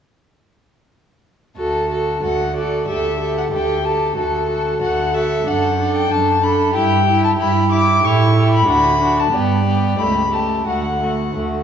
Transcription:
1.57 D2 F#4 A4
1.89 F#4 A4
2.22 D2 F#4 A4 F#5
2.55 F#4 A4 D5
2.88 D2 G4 A4 E5
3.19 G4 A4
3.38 F#5
3.52 D2 G4 A4 G5
3.84 G4 A4 A5
4.16 D2 F#4 A4
4.49 F#4 A4
4.81 D2 F#4 A4 F#5
5.14 F#4 A4 E5
5.46 F#2 D4 A4 F#5
5.78 D4 A4
5.95 G5
6.09 F#2 D4 A4 A5
6.42 D4 A4 B5
6.74 G2 E4 G4 G5
7.06 E4 G4
7.24 A5
7.38 G2 E4 G4 B5
7.71 E4 G4 D6
8.03 A2 E4 G4 C#6
8.34 E4 G4
8.54 B5
8.67 D2 D4 F#4 B5
9.00 D4 F#4
9.19 A5
9.32 G2 B3 G4 D5
9.65 B3 G4
9.98 C#2 A3 G4 B5
10.31 A3 G4 A5
10.66 D2 A3 F#4 F#5
11.00 A3 F#4
11.35 D2 A3 F#4

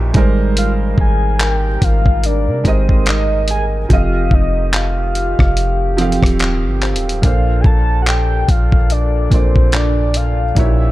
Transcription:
Already playing: A#1 A#2 E3 A#3 C#4 D#4 E4 F#4 G4 E5
0.13 G#1 C3 G3 G#3 A#3 D#4 A#4, kick, closed hi-hat
0.18 C5
0.57 F5, closed hi-hat
0.98 G#1 G#5, kick
1.40 G5, clap, closed hi-hat
1.82 G#1 F5, kick, closed hi-hat
2.06 kick
2.24 D5, closed hi-hat
2.47 C3
2.64 G#1 G#3 D#4 G4 A#4 C5, kick, closed hi-hat
2.68 D#5
2.89 kick
3.06 D#5, clap, closed hi-hat
3.48 G#5, closed hi-hat
3.89 F1 D#3 F3 A3 C4 G4 A4, kick, closed hi-hat
3.93 D#5 F5
4.31 F1 D#5, kick
4.74 F5, clap, closed hi-hat
5.15 closed hi-hat
5.39 F1, kick, cross-stick
5.57 closed hi-hat
5.97 F3 C4 G4 A4, closed hi-hat
6.01 F5
6.12 closed hi-hat
6.23 D#1, kick, cross-stick, closed hi-hat
6.39 clap, closed hi-hat
6.64 G1
6.82 C5, clap, closed hi-hat
6.94 D#1, closed hi-hat
7.09 closed hi-hat
7.22 A#1 A#2 D3 A#3 D4 A4 F5, kick, closed hi-hat
7.26 C5
7.61 A#1 G#5, kick
7.66 A5
8.02 F#5
8.07 G5, clap, closed hi-hat
8.48 A#1 F5, kick, closed hi-hat
8.72 kick
8.90 D5, closed hi-hat
9.30 A#1 A#2 A#3 D4 A4 C5, kick, closed hi-hat
9.34 D5
9.56 kick
9.72 D5, clap, closed hi-hat
10.14 F5, closed hi-hat
10.55 A#1 A#2 E3 A#3 C#4 D#4 E4 F#4 E5, kick, closed hi-hat
10.59 C#5
10.65 G4

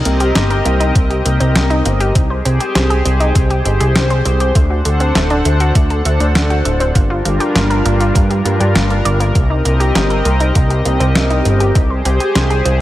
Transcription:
Already playing: C4 G4 A#4 D#5
0.05 C2 A#3, closed hi-hat
0.20 G4, closed hi-hat
0.35 G1 A#3, snare, closed hi-hat
0.50 A#4, closed hi-hat
0.65 C2 A#3, closed hi-hat
0.80 D#4, closed hi-hat
0.95 C2 A#3, kick, closed hi-hat
1.10 G4, closed hi-hat
1.25 C2 A#3, closed hi-hat
1.40 C2 C4, closed hi-hat
1.55 C2 A#3, snare, closed hi-hat
1.70 D#4, closed hi-hat
1.85 G1 A#3, closed hi-hat
2.00 G4, closed hi-hat
2.15 C2 C4 G4 G#4 C5, kick, closed hi-hat
2.30 C5
2.45 C2 C4, closed hi-hat
2.60 G4, closed hi-hat
2.75 C2 C4, snare, closed hi-hat
2.90 G#4, closed hi-hat
3.05 C2 C4, closed hi-hat
3.20 D#4, closed hi-hat
3.35 C2 C4, kick, closed hi-hat
3.50 G4, closed hi-hat
3.65 G1 C4, closed hi-hat
3.80 C2 G#4, closed hi-hat
3.95 C2 C4, snare, closed hi-hat
4.10 C5, closed hi-hat
4.25 C2 C4, closed hi-hat
4.40 G4, closed hi-hat
4.55 D2 A3 D4 A4 F#5, kick, closed hi-hat
4.70 F#4
4.85 D2 A3, closed hi-hat
5.00 C4, closed hi-hat
5.15 D1 A3, snare, closed hi-hat
5.30 D4, closed hi-hat
5.45 D2 A3, closed hi-hat
5.60 F#4, closed hi-hat
5.75 D2 A3, kick, closed hi-hat
5.90 A4, closed hi-hat
6.05 D2 A3, closed hi-hat
6.20 D2 D4, closed hi-hat
6.35 D2 A3, snare, closed hi-hat
6.50 F#4, closed hi-hat
6.65 D1 A3, closed hi-hat
6.80 C4, closed hi-hat
6.95 G1 G3 A#3 D4 F4 A#4, kick, closed hi-hat
7.10 F4
7.25 G1 A#3, closed hi-hat
7.40 G4, closed hi-hat
7.55 G1 A#3, snare, closed hi-hat
7.70 A#4, closed hi-hat
7.85 G1 A#3, closed hi-hat
8.00 F4, closed hi-hat
8.15 G2 A#3, kick, closed hi-hat
8.30 G4, closed hi-hat
8.45 G2 A#3, closed hi-hat
8.60 G2 G4, closed hi-hat
8.75 G1 A#3, snare, closed hi-hat
8.90 A#3, closed hi-hat
9.05 G1 D5, closed hi-hat
9.20 A#3, closed hi-hat
9.35 C2 A#3 C4 G4 D#5, kick, closed hi-hat
9.50 D#4
9.65 C2 A#3, closed hi-hat
9.80 G4, closed hi-hat
9.95 G1 A#3, snare, closed hi-hat
10.10 A#4, closed hi-hat
10.25 C2 A#3, closed hi-hat
10.40 D#4, closed hi-hat
10.55 C2 A#3, kick, closed hi-hat
10.70 G4, closed hi-hat
10.85 C2 A#3, closed hi-hat
11.00 C2 C4, closed hi-hat
11.15 C2 A#3, snare, closed hi-hat
11.30 D#4, closed hi-hat
11.45 G1 A#3, closed hi-hat
11.60 G4, closed hi-hat
11.75 C2 C4 G#4 C5, kick, closed hi-hat
11.90 C5
12.05 C2 C4, closed hi-hat
12.20 G4, closed hi-hat
12.35 C2 C4, snare, closed hi-hat
12.50 G#4, closed hi-hat
12.65 C2 C4, closed hi-hat

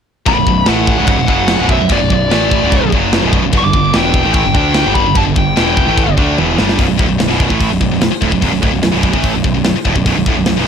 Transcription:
0.26 B0 B1 F#2 B5, kick, china
0.36 B0 B1 F#2
0.47 B0 B1 F#2, kick
0.66 A1 A2 E3 A3 F#5, snare, china
0.87 kick
0.98 C#1 C#2 G#2 C#3
1.07 F#5, kick, china
1.19 B0 B1 F#2
1.28 F#1 F#2 C#3 F#3 F#5, kick
1.48 snare, china
1.59 B0 B1 F#2 B2
1.69 E5, kick
1.80 B0 B1 F#2
1.89 B0 B1 F#2 D5, kick, china
2.00 B0 B1 F#2
2.10 B0 B1 F#2 D5, kick
2.30 A1 A2 E3 A3, snare, china
2.51 kick
2.62 C#1 C#2 G#2 C#3
2.72 kick, china
2.83 B0 B1 F#2
2.92 F#1 F#2 C#3 F#3, kick
3.13 snare, china
3.22 B0 B1 F#2 B2
3.33 kick
3.43 B0 B1 F#2
3.52 G1 G2 D3, kick, china
3.58 D6
3.63 G1 G2 D3
3.73 G1 G2 D3, kick
3.93 E1 E2 B2 E3 G5, snare, china
4.14 kick
4.23 A1 A2 E3 A3
4.33 G5, kick, china
4.44 G1 G2 D3
4.54 D2 D3 A3 D4 G5, kick
4.74 snare, china
4.84 G1 G2 D3 G3
4.94 B5, kick
5.06 G1 G2 D3
5.15 G1 G2 D3 A5, kick, china
5.27 G1 G2 D3
5.36 G1 G2 D3 G5, kick
5.56 E1 E2 B2 E3, snare, china
5.77 kick
5.87 A1 A2 E3 A3
5.98 kick, china
6.07 G1 G2 D3
6.17 D2 D3 A3 D4, kick
6.38 E1 E2 B2 E3, high tom
6.58 G1 G2 D3 G3, snare
6.69 snare
6.78 B0 B1 F#2, kick, open hi-hat
6.87 B0 B1 F#2
6.97 D1 D2 A2, kick
7.08 B0 B1 F#2
7.18 B0 B1 F#2, snare, open hi-hat
7.28 B0 B1 F#2 B2
7.40 kick
7.48 A1 A2 E3 A3, kick
7.61 kick, open hi-hat
7.70 B0 B1 F#2
7.81 B0 B1 F#2, kick
7.91 B0 B1 F#2
8.01 B0 B1 F#2, snare, open hi-hat
8.11 muted distorted electric guitar stroke, muted picked electric bass stroke
8.21 D1 D2 A2, kick
8.32 B0 B1 F#2, kick
8.41 B0 B1 F#2, kick, open hi-hat
8.53 B0 B1 F#2
8.62 D1 D2 A2, kick
8.73 B0 B1 F#2
8.83 B0 B1 F#2, snare, open hi-hat
8.92 B0 B1 F#2 B2
9.03 kick
9.13 A1 A2 E3 A3, kick
9.23 kick, open hi-hat
9.34 B0 B1 F#2
9.44 B0 B1 F#2, kick
9.54 B0 B1 F#2
9.64 B0 B1 F#2, snare, open hi-hat
9.76 muted picked electric bass stroke, muted distorted electric guitar stroke
9.85 D1 D2 A2, kick
9.96 B0 B1 F#2, kick
10.06 B0 B1 F#2, kick, open hi-hat
10.16 B0 B1 F#2
10.26 D1 D2 A2, kick
10.36 B0 B1 F#2
10.46 B0 B1 F#2, snare, open hi-hat
10.57 B0 B1 F#2 B2

